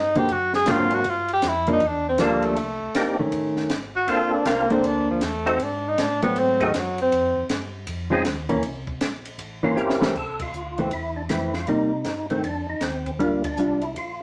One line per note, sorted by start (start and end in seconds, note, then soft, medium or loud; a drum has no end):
0.00 0.28 G2 medium
0.00 0.19 D#4 medium
0.15 0.28 D3 medium
0.15 0.28 A#3 medium
0.15 0.29 C4 medium
0.15 0.29 F#4 medium
0.15 0.34 G4 loud
0.15 ride medium
0.29 0.66 F#2 medium
0.29 0.54 F#4 medium
0.29 kick soft
0.29 ride medium
0.53 0.72 G#4 loud
0.53 snare medium
0.66 1.04 G#2 medium
0.66 0.89 D3 medium
0.66 1.05 F#3 medium
0.66 1.05 A#3 medium
0.66 0.89 A#3 medium
0.66 1.05 C4 medium
0.66 0.90 C4 medium
0.66 1.05 D4 medium
0.66 1.05 F4 medium
0.66 0.90 F#4 medium
0.66 kick soft
0.66 snare medium
0.66 hi-hat pedal medium
0.66 ride medium
0.71 0.95 F4 medium
0.90 1.10 F#4 loud
0.90 ride medium
1.04 1.42 G2 medium
1.04 kick soft
1.04 ride medium
1.09 1.31 F4 medium
1.28 ride medium
1.33 1.49 G4 loud
1.42 1.80 F2 medium
1.42 kick soft
1.42 snare medium
1.42 hi-hat pedal medium
1.42 ride medium
1.48 1.69 E4 medium
1.67 1.80 F3 medium
1.67 1.80 A#3 medium
1.67 1.80 D4 medium
1.67 ride medium
1.72 1.88 D#4 medium
1.80 2.18 E2 medium
1.80 kick soft
1.80 ride medium
1.86 2.08 D4 medium
2.08 2.24 C4 medium
2.18 2.55 D2 medium
2.18 2.57 F3 medium
2.18 2.57 G3 medium
2.18 2.57 A#3 medium
2.18 2.57 D4 medium
2.18 2.57 F4 medium
2.18 2.58 A4 medium
2.18 kick soft
2.18 snare medium
2.18 hi-hat pedal medium
2.18 ride medium
2.23 2.46 A#3 medium
2.42 2.95 A3 medium
2.42 ride medium
2.56 2.79 C2 medium
2.56 kick soft
2.56 ride medium
2.81 2.88 C2 soft
2.94 3.31 A#1 medium
2.94 3.17 A#3 medium
2.94 3.17 C4 medium
2.94 3.17 D4 medium
2.94 3.17 D#4 medium
2.94 3.17 G4 medium
2.94 kick soft
2.94 snare medium
2.94 hi-hat pedal medium
2.94 ride medium
3.19 3.68 D#3 medium
3.19 3.68 A3 medium
3.19 3.69 C#4 medium
3.32 3.55 A1 medium
3.32 kick soft
3.32 ride medium
3.56 3.64 A1 soft
3.56 snare soft
3.70 4.07 G#1 medium
3.70 kick soft
3.70 snare medium
3.70 hi-hat pedal medium
3.70 ride medium
3.96 4.11 F#4 medium
4.08 4.45 A#1 medium
4.08 4.44 A#3 medium
4.08 4.45 C4 medium
4.08 4.45 D4 medium
4.08 4.45 F4 medium
4.08 4.32 F4 medium
4.08 4.45 A4 medium
4.08 kick soft
4.08 ride medium
4.33 4.51 D4 medium
4.45 4.83 C2 medium
4.45 4.68 A#3 medium
4.45 4.73 A#3 medium
4.45 4.68 C4 medium
4.45 4.68 D4 medium
4.45 4.68 F4 medium
4.45 4.68 A#4 medium
4.45 kick soft
4.45 snare medium
4.45 hi-hat pedal medium
4.45 ride medium
4.70 5.19 A#3 medium
4.70 4.87 C4 medium
4.70 5.20 D4 medium
4.70 5.20 A4 medium
4.70 5.20 C5 medium
4.70 ride medium
4.84 5.21 D2 medium
4.84 5.09 D4 loud
4.84 kick soft
4.84 ride medium
5.10 5.25 F3 medium
5.21 5.58 E2 medium
5.21 5.49 A3 medium
5.21 kick soft
5.21 snare medium
5.21 hi-hat pedal medium
5.21 ride medium
5.46 5.58 A3 medium
5.46 5.58 C4 medium
5.46 5.64 C4 medium
5.46 5.58 D#4 medium
5.46 5.59 F#4 medium
5.46 5.59 A4 medium
5.46 ride medium
5.59 5.97 G#2 medium
5.59 5.89 D4 medium
5.59 kick soft
5.59 ride medium
5.88 6.02 D#4 medium
5.98 6.35 A2 medium
5.98 6.22 D4 medium
5.98 kick soft
5.98 snare medium
5.98 hi-hat pedal medium
5.98 ride medium
6.22 6.71 F#3 medium
6.22 6.71 A3 medium
6.22 6.40 B3 medium
6.22 6.72 C4 medium
6.22 ride medium
6.36 6.73 G#2 medium
6.36 6.66 C4 loud
6.36 kick soft
6.36 ride medium
6.60 6.72 A3 medium
6.60 6.72 C4 medium
6.60 6.73 D#4 medium
6.60 6.73 F#4 medium
6.60 6.73 G#4 medium
6.60 kick medium
6.60 ride medium
6.65 6.78 D#3 medium
6.74 7.11 F#2 medium
6.74 6.99 F#3 medium
6.74 kick soft
6.74 snare medium
6.74 hi-hat pedal medium
6.74 ride medium
6.98 7.48 C4 loud
6.98 ride medium
7.11 7.34 F2 medium
7.11 kick soft
7.11 ride medium
7.36 7.43 F2 soft
7.49 7.86 G2 medium
7.49 kick soft
7.49 snare medium
7.49 hi-hat pedal medium
7.49 ride medium
7.87 8.24 F2 medium
7.87 kick soft
7.87 ride medium
8.10 8.23 F3 medium
8.10 8.24 G#3 medium
8.10 8.24 C4 medium
8.10 8.24 C#4 medium
8.10 8.24 D#4 medium
8.10 8.24 F4 medium
8.10 8.24 G#4 loud
8.25 8.62 D#2 medium
8.25 kick soft
8.25 snare medium
8.25 hi-hat pedal medium
8.25 ride medium
8.49 8.62 E3 medium
8.49 8.62 A#3 medium
8.49 8.62 C#4 loud
8.49 kick medium
8.49 ride medium
8.63 9.00 C2 loud
8.63 kick soft
8.63 ride medium
8.87 kick medium
9.01 9.38 A#1 loud
9.01 kick soft
9.01 snare medium
9.01 hi-hat pedal medium
9.01 ride medium
9.25 ride medium
9.39 9.76 A1 medium
9.39 kick soft
9.39 ride medium
9.63 9.76 E3 medium
9.63 9.76 A#3 medium
9.63 9.76 C#4 medium
9.63 10.03 F4 loud
9.76 10.13 G1 medium
9.76 10.15 C4 medium
9.76 10.15 C#4 medium
9.76 10.15 E4 medium
9.76 10.01 G4 medium
9.76 10.15 A#4 medium
9.76 hi-hat pedal medium
9.90 snare medium
10.01 10.14 E3 medium
10.01 10.14 A3 loud
10.01 10.14 C4 loud
10.01 10.15 G4 medium
10.01 snare loud
10.15 10.52 C2 medium
10.15 10.41 A4 medium
10.15 kick medium
10.15 crash medium
10.39 10.89 F4 medium
10.39 kick medium
10.39 ride medium
10.53 10.90 D2 medium
10.53 hi-hat pedal medium
10.78 10.90 E3 medium
10.78 10.91 A3 medium
10.78 10.91 C4 medium
10.78 ride soft
10.91 11.28 E2 medium
10.91 11.15 E4 medium
10.91 kick soft
10.91 ride medium
11.16 11.22 D4 medium
11.29 11.66 F2 medium
11.29 11.52 E3 medium
11.29 11.52 A3 medium
11.29 11.52 C4 medium
11.29 11.54 E4 medium
11.29 kick soft
11.29 snare medium
11.29 hi-hat pedal medium
11.29 ride medium
11.54 11.68 F4 medium
11.54 snare soft
11.67 12.04 C3 medium
11.67 11.90 G3 medium
11.67 11.90 A#3 medium
11.67 12.26 D#4 medium
11.67 11.90 D#4 medium
11.67 kick soft
11.67 ride medium
12.04 12.42 G2 medium
12.04 kick soft
12.04 snare medium
12.04 hi-hat pedal medium
12.04 ride medium
12.30 12.43 D#3 medium
12.30 12.43 A3 medium
12.30 12.43 C4 medium
12.30 ride soft
12.43 12.66 F2 medium
12.43 12.67 D4 medium
12.43 kick soft
12.43 ride medium
12.67 12.74 F2 soft
12.67 12.83 D#4 medium
12.81 13.19 D#2 medium
12.81 13.11 C4 medium
12.81 kick soft
12.81 snare medium
12.81 hi-hat pedal medium
12.81 ride medium
13.06 kick medium
13.06 ride soft
13.19 13.57 D2 medium
13.19 13.41 G3 medium
13.19 13.42 A#3 medium
13.19 13.42 D4 medium
13.19 13.42 F4 medium
13.19 kick soft
13.19 ride medium
13.44 13.84 D4 medium
13.44 kick medium
13.44 ride medium
13.57 13.94 C2 medium
13.57 13.80 G3 soft
13.57 13.80 D4 medium
13.57 13.81 F4 medium
13.57 hi-hat pedal medium
13.81 13.95 E4 medium
13.81 ride soft
13.96 14.23 A#1 medium
13.96 14.22 F4 medium
13.96 kick soft
13.96 ride medium